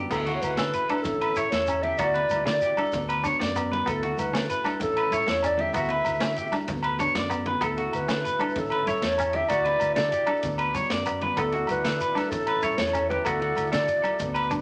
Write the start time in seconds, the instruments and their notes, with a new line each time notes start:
Already playing: transistor combo organ B3 D4, clean electric guitar G4
0.10 fingered electric bass D2, transistor combo organ A3 E4 F#4, clean electric guitar B3, clarinet A4, muted clean electric guitar stroke, kick, crash, muted conga, low agogo, shekere
0.26 clean electric guitar F#4, ride, low conga, shekere
0.34 clarinet C#5, low conga
0.42 fingered electric bass D2, clarinet B4, ride, high conga, low agogo, shekere
0.50 low conga
0.57 fingered electric bass D3, clean electric guitar C#4 A4, snare, ride, muted conga
0.73 clean electric guitar B4, ride, shekere
0.82 low conga
0.89 clean electric guitar D4 A4, ride, high conga, low agogo
0.97 shekere
1.03 fingered electric bass A1, transistor combo organ C#4 A4, clarinet A4, kick, ride, muted conga, low conga, shekere
1.21 clean electric guitar B4, ride, low agogo, shekere
1.29 low conga
1.36 clean electric guitar E4 C#5, kick, ride, shekere
1.50 fingered electric bass E2, clean electric guitar A4, clarinet C#5, snare, ride, muted conga, low conga, shekere
1.59 low conga
1.67 clean electric guitar C#4, ride, low agogo, shekere
1.83 clean electric guitar G4, clarinet E5, ride, high conga, low conga
1.97 fingered electric bass D2, clean electric guitar B3 F#4, transistor combo organ E4 F#4 D5, clarinet D5, kick, ride, muted conga, low agogo, shekere
2.13 clean electric guitar B4, ride, low conga, shekere
2.23 low conga
2.30 fingered electric bass D2, ride, high conga, low agogo, shekere
2.39 low conga
2.46 clean electric guitar C#3, fingered electric bass D3, clarinet D5, muted clean electric guitar stroke, snare, ride, muted conga
2.61 clean electric guitar G4, ride, low conga, shekere
2.69 low conga
2.77 clean electric guitar D4 A4, ride, high conga, low agogo
2.85 shekere
2.92 fingered electric bass D2, transistor combo organ B3, kick, ride, muted conga, low conga, shekere
3.01 shekere
3.08 clean electric guitar B4, ride, low agogo, shekere
3.18 low conga
3.24 clean electric guitar D4 C#5, kick, ride, high conga, shekere
3.40 fingered electric bass F#2, clean electric guitar D5, snare, ride, muted conga, low conga, shekere
3.49 low conga
3.55 clean electric guitar B3, ride, low agogo, shekere
3.72 clean electric guitar B4, ride, high conga, low conga
3.86 fingered electric bass D2, transistor combo organ A3 E4, clean electric guitar B3 A4, clarinet A4, kick, ride, muted conga, low agogo, shekere
4.03 clean electric guitar F#4, ride, low conga, shekere
4.17 fingered electric bass D2, clarinet B4, ride, high conga, low agogo, shekere
4.25 low conga
4.33 fingered electric bass D3, clean electric guitar C#4 A4, snare, ride, muted conga
4.50 clean electric guitar B4, clarinet B4, ride, shekere
4.64 clean electric guitar D4 A4, snare, ride, high conga, low agogo
4.80 fingered electric bass A1, transistor combo organ C#4 A4, clarinet A4, kick, ride, muted conga, low conga, shekere
4.90 shekere
4.97 clean electric guitar B4, ride, low agogo, shekere
5.04 low conga
5.11 clean electric guitar E4 C#5, kick, ride, high conga, shekere
5.22 shekere
5.26 fingered electric bass E2, clean electric guitar A4, clarinet C#5, snare, ride, muted conga, low conga
5.35 low conga
5.43 clean electric guitar C#4, clarinet D5, ride, low agogo, shekere
5.58 clean electric guitar G4, clarinet E5, ride, high conga, low conga
5.73 fingered electric bass D2, transistor combo organ A3 F#4, clean electric guitar B3 F#4, clarinet E5, kick, ride, muted conga, low agogo, shekere
5.83 shekere
5.89 clean electric guitar B4, ride, low conga
6.04 fingered electric bass D2, ride, high conga, low agogo, shekere
6.12 low conga, shekere
6.20 fingered electric bass D3, clean electric guitar C#4, snare, ride, muted conga, shekere
6.36 clean electric guitar G4, ride, shekere
6.44 low conga, shekere
6.52 clean electric guitar D4, muted clean electric guitar stroke, snare, ride, high conga, low agogo, shekere
6.60 low conga, shekere
6.68 fingered electric bass D2, transistor combo organ B3, kick, ride, muted conga, low conga, shekere
6.77 shekere
6.83 clean electric guitar B4, ride, low agogo
6.91 low conga
6.99 clean electric guitar D4 C#5, kick, ride, high conga, shekere
7.15 fingered electric bass F#2, clean electric guitar D5, snare, ride, muted conga
7.22 low conga
7.30 clean electric guitar B3, ride, low agogo, shekere
7.39 low conga
7.46 clean electric guitar B4, ride, high conga, low conga
7.61 fingered electric bass D2, transistor combo organ A3 E4, clean electric guitar B3 A4, clarinet A4, kick, ride, muted conga, low agogo, shekere
7.77 clean electric guitar F#4, ride, low conga, shekere
7.86 low conga
7.93 fingered electric bass D2, clarinet B4, ride, low agogo, shekere
8.00 low conga
8.08 fingered electric bass D3, clean electric guitar C#4 A4, snare, ride, muted conga
8.24 clean electric guitar B4, ride, low conga, shekere
8.32 low conga
8.39 clean electric guitar D4 A4, ride, high conga, low agogo
8.49 shekere
8.56 fingered electric bass A1, transistor combo organ C#4 A4, clarinet A4, kick, ride, muted conga, low conga, shekere
8.65 shekere
8.70 clean electric guitar B4, ride, low agogo, shekere
8.79 low conga
8.86 clean electric guitar E4 C#5, kick, ride, high conga, shekere
9.02 fingered electric bass E2, clean electric guitar A4, clarinet C#5, snare, ride, muted conga, low conga, shekere
9.18 clean electric guitar C#4, ride, low agogo, shekere
9.33 clean electric guitar G4, clarinet E5, ride, high conga, low conga
9.49 fingered electric bass D2, transistor combo organ E4 F#4 D5, clean electric guitar F#4, clarinet D5, muted clean electric guitar stroke, kick, ride, muted conga, low agogo, shekere
9.65 clean electric guitar B4, ride, low conga, shekere
9.74 low conga
9.80 fingered electric bass D2, ride, high conga, low agogo, shekere
9.90 low conga
9.95 clean electric guitar C#3 A4, fingered electric bass D3, clarinet D5, snare, ride, muted conga
10.12 clean electric guitar G4, ride, low conga, shekere
10.19 low conga
10.27 clean electric guitar D4 A4, ride, high conga, low agogo
10.36 shekere
10.43 fingered electric bass D2, transistor combo organ B3, kick, ride, muted conga, low conga, shekere
10.58 clean electric guitar B4, ride, low agogo, shekere
10.68 low conga
10.74 clean electric guitar C#5, muted clean electric guitar stroke, kick, ride, high conga, shekere
10.83 shekere
10.90 fingered electric bass F#2, clean electric guitar D5, snare, ride, muted conga, low conga, shekere
10.98 low conga
11.06 clean electric guitar B3, ride, low agogo, shekere
11.21 clean electric guitar B4, ride, high conga, low conga
11.37 fingered electric bass D2, clean electric guitar B3 A4, transistor combo organ E4 F#4, clarinet A4, kick, ride, muted conga, low agogo, shekere
11.52 clean electric guitar F#4, ride, low conga, shekere
11.62 low conga
11.67 fingered electric bass D2, clarinet B4, ride, high conga, low agogo, shekere
11.77 low conga
11.84 fingered electric bass D3, clean electric guitar A4, snare, ride, muted conga
12.00 clean electric guitar B4, ride, shekere
12.08 low conga
12.15 clean electric guitar D4 A4, snare, ride, high conga, low agogo
12.24 shekere
12.30 fingered electric bass A1, transistor combo organ C#4 E4 A4, clarinet A4, kick, ride, muted conga, low conga, shekere
12.47 clean electric guitar B4, ride, low agogo, shekere
12.55 low conga
12.62 clean electric guitar E4 C#5, kick, ride, high conga, shekere
12.71 shekere
12.78 fingered electric bass E2, clean electric guitar A4, clarinet C#5, snare, ride, muted conga, low conga, shekere
12.86 low conga
12.93 clean electric guitar C#4, ride, low agogo, shekere
13.09 clean electric guitar G4, clarinet B4, ride, high conga, low conga
13.25 fingered electric bass D2, clean electric guitar B3 F#4, transistor combo organ F#4 D5, clarinet A4, kick, ride, muted conga, low agogo, shekere
13.33 low conga
13.40 clean electric guitar F#4, ride, low conga
13.55 fingered electric bass D2, ride, high conga, low conga, low agogo, shekere
13.65 low conga, shekere
13.72 clean electric guitar C#3 A4, fingered electric bass D3, clarinet D5, snare, ride, muted conga, shekere
13.87 muted clean electric guitar stroke, ride, shekere
13.97 low conga
14.02 clean electric guitar A4, muted clean electric guitar stroke, ride, high conga, low conga, low agogo, shekere
14.19 fingered electric bass D2, transistor combo organ B3 F#4, kick, ride, muted conga, low conga, shekere
14.29 low conga
14.34 clean electric guitar B4, ride, low agogo
14.43 low conga, shekere
14.50 clean electric guitar D4, muted clean electric guitar stroke, kick, ride, high conga, low conga, shekere